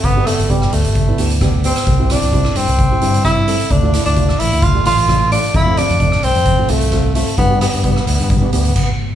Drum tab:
CC |----------------|----------------|----------------|----------------|
HH |x-xxx-xxx-xxx-xx|x-xxx-xxx-xxx-xx|x-xxx-xxx-xxx-xx|x-xxx-xxx-xxx-xx|
SD |--r--r------r--r|--r--r------r---|--r--r------r---|--r--r------r---|
BD |o---o---o---o---|o---o---o---o---|o---o---o---o---|o---o---o---o---|

CC |------------x---|
HH |x-xxx-xxx-xx----|
SD |--r--r----------|
BD |o---o---o---o---|